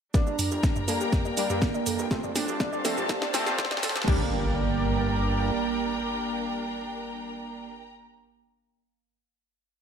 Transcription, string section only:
0.14 2.86 D4 medium
0.26 2.11 A#5 medium
0.34 2.11 A#4 medium
0.52 2.84 G5 medium
2.11 4.08 C4 medium
2.23 4.08 A4 medium
2.56 4.08 F5 medium
2.56 4.08 A5 medium
4.08 7.68 D4 medium
4.15 7.75 A#4 medium
4.23 7.83 G5 medium
4.30 7.90 A#5 medium

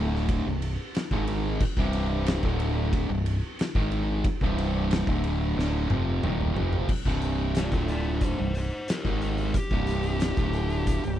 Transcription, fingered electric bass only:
0.00 0.42 D1 loud
0.46 0.77 C1 medium
1.11 1.58 G#1 loud
1.77 2.39 C1 medium
2.44 3.06 D1 loud
3.10 3.41 C1 medium
3.75 4.21 G#1 medium
4.42 5.04 C1 loud
5.08 5.54 D1 medium
5.57 5.88 D1 medium
5.90 6.21 F1 loud
6.23 6.54 D#1 loud
6.56 6.87 F1 loud
7.05 7.68 C1 medium
7.72 8.35 D1 loud
8.39 8.70 C1 medium
9.05 9.51 G#1 medium
9.71 10.33 C1 loud
10.37 10.99 D1 medium
11.05 11.19 C1 medium

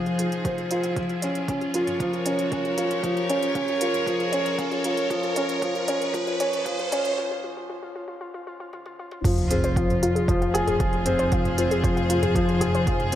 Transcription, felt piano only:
0.00 0.19 F3 loud
0.00 1.00 C4 medium
0.00 0.71 F4 medium
0.00 0.99 G#4 medium
0.19 0.44 F3 medium
0.45 0.70 C5 medium
0.71 0.96 F4 medium
0.98 1.22 F3 medium
1.24 1.48 C#4 medium
1.49 1.74 C#4 medium
1.75 1.99 F4 medium
2.01 2.25 F3 medium
2.26 2.50 C#4 medium
2.52 2.77 C#4 medium
2.78 3.02 F4 medium
3.03 3.28 F3 medium
3.29 3.53 C#4 medium
3.55 3.80 C#4 medium
3.82 4.06 F4 medium
4.07 4.32 F3 medium
4.33 4.58 C#4 medium
4.59 4.84 C#4 medium
4.85 5.09 F4 medium
5.11 5.35 F3 medium
5.37 5.61 C#4 medium
5.62 5.87 F3 medium
5.89 6.12 C#4 medium
6.14 6.39 F3 medium
6.40 6.64 C#4 medium
6.66 6.91 F3 medium
6.92 7.16 C#4 medium
9.25 9.49 F3 medium
9.50 9.65 C4 medium
9.77 9.92 F3 medium
10.03 10.27 F4 medium
10.28 10.53 F3 loud
10.54 10.79 G#4 loud
10.80 11.05 F3 medium
11.06 11.31 C4 loud
11.32 11.56 F3 medium
11.59 11.73 C4 medium
11.84 11.99 F3 medium
12.10 12.34 F4 medium
12.35 12.60 F3 loud
12.61 12.86 G#4 medium
12.87 13.12 F3 medium
13.12 13.15 C4 loud

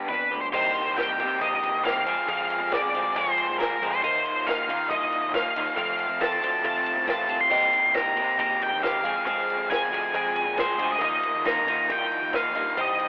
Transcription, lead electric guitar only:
0.09 0.41 B4 medium
0.41 0.46 C5 medium
0.53 0.98 C5 loud
0.96 1.42 G5 medium
1.42 1.82 D#5 medium
1.85 2.27 F5 medium
2.29 2.73 F5 loud
2.74 3.18 D5 medium
3.17 3.59 C5 medium
3.59 3.91 A#4 loud
3.92 4.01 C5 medium
4.03 4.48 C5 medium
4.47 4.89 F5 medium
4.90 5.31 D#5 loud
5.34 5.76 F5 medium
5.77 6.22 F5 loud
6.21 6.65 A5 loud
6.66 7.06 A5 loud
7.10 7.40 A5 loud
7.41 7.95 C6 loud
7.95 8.39 A#5 loud
8.41 8.63 A#5 loud
8.62 8.83 G5 medium
8.83 9.25 F5 loud
9.26 9.67 F5 loud
9.70 10.60 G#5 loud
10.60 10.92 C5 loud
10.92 11.01 D#5 medium
11.02 11.47 D#5 loud
11.46 11.91 A#5 loud
11.92 12.35 G5 loud
12.36 12.79 F5 medium
12.81 13.08 D#5 medium

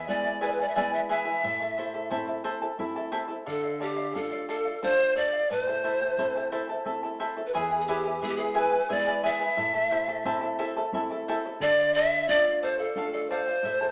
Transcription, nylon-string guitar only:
0.08 0.62 G#3 soft
0.08 0.62 B3 soft
0.08 0.63 E4 soft
0.76 1.30 G#3 soft
0.76 1.31 B3 soft
0.76 1.31 E4 soft
1.44 2.09 A2 medium
2.11 2.65 A3 soft
2.11 2.66 C4 soft
2.11 2.66 E4 soft
2.78 3.33 A3 soft
2.78 3.33 C4 soft
2.78 3.34 E4 soft
3.47 4.13 D3 medium
4.15 4.69 A3 soft
4.15 4.70 D4 soft
4.15 4.70 F4 medium
4.83 5.37 A3 soft
4.83 5.37 D4 soft
4.83 5.37 F4 soft
5.51 6.16 A2 medium
6.18 6.72 A3 soft
6.18 6.72 C4 soft
6.18 6.73 E4 medium
6.85 7.40 A3 soft
6.85 7.40 C4 soft
6.85 7.41 E4 soft
7.54 8.20 E2 medium
8.22 8.76 G#3 soft
8.22 8.76 B3 soft
8.22 8.76 E4 soft
8.90 9.44 G#3 soft
8.90 9.44 B3 soft
8.90 9.44 E4 soft
9.57 10.23 A2 medium
10.25 10.79 A3 soft
10.25 10.79 C4 soft
10.25 10.79 E4 medium
10.92 11.47 A3 soft
10.92 11.47 C4 soft
10.92 11.47 E4 soft
11.60 12.26 D3 medium
12.28 12.82 A3 medium
12.28 12.82 D4 soft
12.28 12.82 F4 medium
12.95 13.50 A3 soft
12.95 13.50 D4 soft
12.95 13.50 F4 soft
13.63 13.91 A2 medium

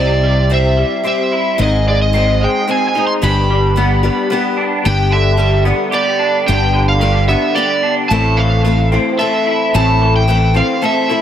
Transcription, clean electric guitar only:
0.00 1.33 C3 medium
0.00 0.51 C4 medium
0.23 0.76 G3 medium
0.51 1.03 C4 medium
0.77 1.59 G3 medium
1.04 1.59 C4 medium
1.32 1.60 E4 medium
1.60 2.96 G#2 medium
1.87 2.40 G#3 medium
2.14 2.66 C4 medium
2.41 3.23 G#3 medium
2.68 3.22 C4 medium
2.95 3.23 D#4 medium
3.22 4.58 G2 medium
3.50 4.02 G3 medium
3.77 4.29 B3 medium
4.04 4.85 G3 medium
4.31 4.85 B3 medium
4.57 4.85 D4 medium
4.84 6.20 G2 medium
5.11 6.47 D3 medium
5.38 6.74 G3 medium
5.64 7.01 B3 medium
5.91 7.28 G4 medium
6.19 7.55 D4 medium
6.46 7.82 G2 medium
6.73 8.10 D3 medium
7.00 8.09 G3 medium
7.28 8.10 B3 medium
7.55 8.10 G4 medium
7.83 8.10 D4 medium
8.11 9.47 A2 medium
8.37 8.62 E3 medium
8.63 10.00 E3 medium
8.92 10.28 C4 medium
9.18 10.55 A4 medium
9.46 10.83 E4 medium
9.74 11.10 A2 medium
10.02 10.27 E3 medium
10.28 11.22 E3 medium
10.55 11.22 C4 medium
10.82 11.22 A4 medium
11.09 11.22 E4 medium

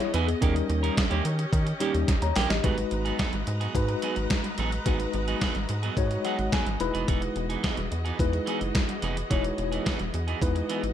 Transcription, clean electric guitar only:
0.00 muted clean electric guitar stroke medium
0.14 0.29 E3 medium
0.14 0.28 B3 medium
0.14 0.27 D#4 medium
0.14 0.27 G#4 loud
0.28 muted clean electric guitar stroke medium
0.42 0.57 D#3 medium
0.42 0.56 A#3 medium
0.42 0.55 C#4 medium
0.42 0.54 G4 medium
0.56 muted clean electric guitar stroke soft
0.70 muted clean electric guitar stroke soft
0.83 0.96 D#3 medium
0.83 0.95 A#3 medium
0.83 0.95 C#4 medium
0.83 0.95 A#4 medium
0.97 muted clean electric guitar stroke medium
1.11 1.24 D#3 medium
1.11 1.24 A#3 medium
1.11 1.25 C#4 medium
1.11 1.25 G4 medium
1.25 muted clean electric guitar stroke soft
1.39 muted clean electric guitar stroke soft
1.67 muted clean electric guitar stroke medium
1.80 1.95 D#3 medium
1.80 1.95 A#3 medium
1.80 1.94 C#4 medium
1.80 1.93 G4 medium
1.94 muted clean electric guitar stroke soft
2.08 muted clean electric guitar stroke soft
2.22 muted clean electric guitar stroke soft
2.36 2.51 D#3 medium
2.36 2.50 A#3 medium
2.36 2.50 C#4 medium
2.36 2.49 G4 medium
2.50 muted clean electric guitar stroke soft
2.64 2.79 F#3 medium
2.64 2.78 B3 loud
2.64 2.77 D#4 medium
2.64 2.76 G#4 loud
2.78 muted clean electric guitar stroke soft
2.91 muted clean electric guitar stroke soft
3.05 3.17 F#3 soft
3.05 3.18 B3 medium
3.05 3.17 D#4 medium
3.05 3.17 G#4 medium
3.19 3.34 F#3 loud
3.19 3.33 B3 medium
3.19 3.33 D#4 loud
3.19 3.32 G#4 medium
3.33 muted clean electric guitar stroke soft
3.47 muted clean electric guitar stroke soft
3.61 3.73 F#3 medium
3.61 3.73 B3 soft
3.61 3.73 D#4 medium
3.61 3.72 G#4 medium
3.89 muted clean electric guitar stroke soft
4.02 4.17 F#3 medium
4.02 4.17 B3 medium
4.02 4.16 D#4 medium
4.02 4.15 G#4 medium
4.16 muted clean electric guitar stroke soft
4.31 muted clean electric guitar stroke soft
4.44 muted clean electric guitar stroke soft
4.58 4.73 F#3 medium
4.58 4.72 B3 medium
4.58 4.71 D#4 medium
4.58 4.71 G#4 medium
4.72 muted clean electric guitar stroke medium
4.86 5.01 F#3 medium
4.86 5.00 B3 medium
4.86 4.99 D#4 medium
4.86 4.99 G#4 medium
5.00 muted clean electric guitar stroke soft
5.14 muted clean electric guitar stroke soft
5.28 5.40 F#3 soft
5.28 5.40 B3 medium
5.28 5.40 D#4 medium
5.28 5.39 G#4 medium
5.42 5.57 F#3 medium
5.42 5.55 B3 medium
5.42 5.55 D#4 medium
5.42 5.54 G#4 medium
5.55 muted clean electric guitar stroke soft
5.69 muted clean electric guitar stroke soft
5.83 5.96 F#3 medium
5.83 5.95 B3 medium
5.83 5.95 D#4 medium
5.83 5.95 G#4 medium
6.11 muted clean electric guitar stroke soft
6.25 6.40 F#3 medium
6.25 6.39 B3 medium
6.25 6.38 D#4 medium
6.25 6.38 G#4 medium
6.39 muted clean electric guitar stroke soft
6.52 6.67 F#3 medium
6.52 6.67 B3 medium
6.52 6.66 D#4 medium
6.52 6.65 G#4 loud
6.66 muted clean electric guitar stroke soft
6.80 muted clean electric guitar stroke soft
6.94 7.07 E3 medium
6.94 7.06 B3 medium
6.94 7.06 D#4 medium
6.94 7.06 G#4 medium
7.08 7.23 E3 medium
7.08 7.22 B3 medium
7.08 7.22 D#4 medium
7.08 7.21 G#4 medium
7.22 muted clean electric guitar stroke soft
7.36 muted clean electric guitar stroke soft
7.50 7.62 E3 soft
7.50 7.62 B3 soft
7.50 7.62 D#4 soft
7.50 7.61 G#4 medium
7.63 7.78 E3 medium
7.63 7.77 B3 medium
7.63 7.77 D#4 medium
7.63 7.76 G#4 loud
7.77 muted clean electric guitar stroke medium
7.91 muted clean electric guitar stroke soft
8.05 8.18 E3 medium
8.05 8.17 B3 medium
8.05 8.17 D#4 medium
8.05 8.17 G#4 medium
8.33 muted clean electric guitar stroke soft
8.46 8.62 E3 medium
8.46 8.61 B3 medium
8.46 8.60 D#4 medium
8.46 8.59 G#4 medium
8.61 muted clean electric guitar stroke soft
8.75 muted clean electric guitar stroke soft
8.89 muted clean electric guitar stroke soft
9.02 9.17 E3 medium
9.02 9.17 B3 medium
9.02 9.16 D#4 medium
9.02 9.15 G#4 medium
9.17 muted clean electric guitar stroke medium
9.30 9.45 E3 medium
9.30 9.44 B3 medium
9.30 9.44 D#4 medium
9.30 9.43 G#4 medium
9.44 muted clean electric guitar stroke soft
9.58 muted clean electric guitar stroke soft
9.72 9.85 E3 soft
9.72 9.84 B3 soft
9.72 9.84 D#4 medium
9.72 9.84 G#4 soft
9.86 10.01 E3 medium
9.86 10.00 B3 medium
9.86 9.99 D#4 medium
9.86 9.98 G#4 medium
10.00 muted clean electric guitar stroke soft
10.14 muted clean electric guitar stroke soft
10.28 10.40 E3 medium
10.28 10.40 B3 medium
10.28 10.40 D#4 medium
10.28 10.39 G#4 medium
10.55 muted clean electric guitar stroke soft
10.69 10.84 E3 medium
10.69 10.83 B3 medium
10.69 10.83 D#4 medium
10.69 10.82 G#4 medium
10.83 muted clean electric guitar stroke soft

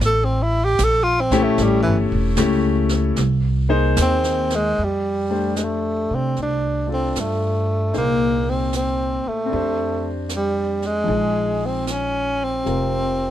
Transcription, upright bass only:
0.00 0.76 A1 medium
0.79 1.55 A#1 medium
1.58 1.86 A1 medium
1.86 2.11 G1 medium
2.12 2.36 E1 medium
2.38 3.14 C#2 loud
3.18 3.95 C2 medium
3.98 4.75 D#2 medium
4.78 6.06 F2 medium
6.10 6.35 C3 soft
6.37 7.11 C2 medium
7.16 7.90 G2 medium
7.95 9.21 C2 medium
9.26 muted upright bass stroke soft
9.53 11.05 F2 medium
11.08 12.61 A#1 medium
12.66 13.30 F1 medium

